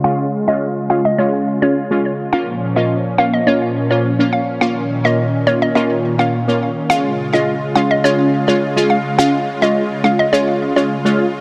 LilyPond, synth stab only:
\new Staff \with { instrumentName = "Synth stab" } { \time 4/4 \key des \major \tempo 4 = 105 <aes des' f'>16 r8 <aes des' f'>16 r8 <aes des' f'>16 r16 <aes des' f'>8. <aes des' f'>16 r16 <aes des' f'>16 r8 | <bes des' f'>16 r8 <bes des' f'>16 r8 <bes des' f'>16 r16 <bes des' f'>8. <bes des' f'>16 r16 <bes des' f'>16 r8 | <bes des' f'>16 r8 <bes des' f'>16 r8 <bes des' f'>16 r16 <bes des' f'>8. <bes des' f'>16 r16 <bes des' f'>16 r8 | <aes des' f'>16 r8 <aes des' f'>16 r8 <aes des' f'>16 r16 <aes des' f'>8. <aes des' f'>16 r16 <aes des' f'>16 r8 |
<aes des' f'>16 r8 <aes des' f'>16 r8 <aes des' f'>16 r16 <aes des' f'>8. <aes des' f'>16 r16 <aes des' f'>16 r8 | }